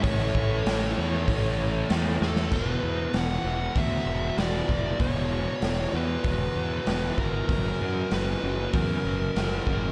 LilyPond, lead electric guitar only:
\new Staff \with { instrumentName = "Lead electric guitar" } { \time 4/4 \key e \dorian \tempo 4 = 97 cis''2. r8 a'8 | b'4 fis''4 e''4 d''4 | cis''4. b'2 ais'8~ | ais'4 b'4 ais'2 | }